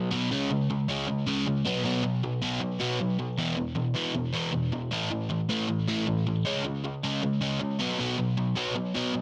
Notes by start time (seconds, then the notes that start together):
Already playing: F#3
0.11 B2 F#3 B3
0.31 C#3 G#3 C#4
0.51 C#3 G#3
0.70 C#3 G#3
0.88 C#3 G#3 C#4
1.08 C#3 G#3
1.27 C#3 G#3 C#4
1.47 C#3 G#3
1.65 B2 F#3 B3
1.84 B2 F#3 B3
2.03 B2 F#3
2.23 B2 F#3
2.42 B2 F#3 B3
2.61 B2 F#3
2.80 B2 F#3 B3
3.00 B2 F#3
3.19 B2 F#3
3.38 E2 B2 E3
3.57 E2 B2
3.76 E2 B2
3.95 E2 B2 E3
4.15 E2 B2
4.33 E2 B2 E3
4.52 E2 B2
4.72 E2 B2
4.91 A2 E3 A3
5.11 A2 E3
5.30 A2 E3
5.49 A2 E3 A3
5.68 A2 E3
5.88 A2 E3 A3
6.07 A2 E3
6.27 A2 E3
6.45 C#3 G#3 C#4
6.65 C#3 G#3
6.84 C#3 G#3
7.03 C#3 G#3 C#4
7.23 C#3 G#3
7.41 C#3 G#3 C#4
7.60 C#3 G#3
7.79 B2 F#3 B3
7.99 B2 F#3 B3
8.18 B2 F#3
8.37 B2 F#3
8.56 B2 F#3 B3
8.76 B2 F#3
8.95 B2 F#3 B3
9.14 B2 F#3